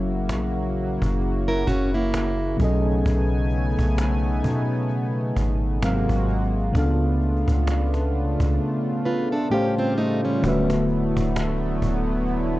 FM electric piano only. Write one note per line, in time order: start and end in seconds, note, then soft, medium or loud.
0.00 2.54 F#3 medium
0.00 2.55 C#4 medium
0.00 2.56 G#4 medium
0.00 2.57 A#4 medium
0.00 2.58 E5 medium
2.56 5.77 B2 medium
2.56 5.78 F#3 medium
2.56 5.79 C#4 medium
2.61 5.79 G#4 medium
2.61 5.80 A4 medium
2.61 5.81 D#5 medium
5.81 6.74 G#2 medium
5.81 6.74 F#3 medium
5.81 6.75 C4 medium
5.81 6.76 A#4 medium
5.81 6.76 F5 medium
6.71 9.46 C#3 medium
6.71 9.47 B3 medium
6.71 9.48 D4 medium
6.77 9.49 A4 medium
6.77 9.50 F5 medium
9.50 10.43 A2 medium
9.50 10.42 A3 medium
9.50 10.44 C#4 medium
9.50 10.44 G4 medium
9.50 10.45 C5 medium
9.50 10.45 F5 medium
10.41 12.60 D3 medium
10.41 12.60 A3 medium
10.41 12.60 F#4 medium
10.47 12.60 B4 medium
10.47 12.60 E5 medium